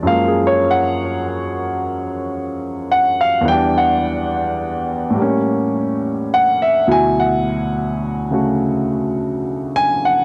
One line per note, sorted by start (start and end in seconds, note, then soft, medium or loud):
0.03 3.45 F#2 medium
0.03 3.46 F3 medium
0.03 3.46 G#3 medium
0.07 3.47 A#3 medium
0.07 0.34 F5 medium
0.28 0.59 G#4 medium
0.47 0.68 C#5 medium
0.71 1.97 F#5 medium
2.92 3.18 F#5 medium
3.21 3.47 F5 medium
3.41 5.14 E2 medium
3.41 5.16 E3 medium
3.48 5.13 G3 medium
3.48 5.19 D4 medium
3.48 3.74 G5 medium
3.78 4.57 F#5 medium
5.10 6.84 A2 medium
5.14 6.86 G3 medium
5.14 6.88 A#3 medium
5.21 6.90 C#4 medium
6.34 6.60 F#5 loud
6.62 6.88 E5 medium
6.88 10.25 D2 medium
6.88 10.25 B2 medium
6.88 10.25 F#3 medium
6.88 10.25 E4 medium
6.92 7.17 G#5 medium
7.20 7.99 F#5 medium
8.31 10.25 C#3 soft
8.31 10.25 A3 soft
8.31 10.25 F#4 medium
9.76 10.02 G#5 loud
10.05 10.25 F#5 medium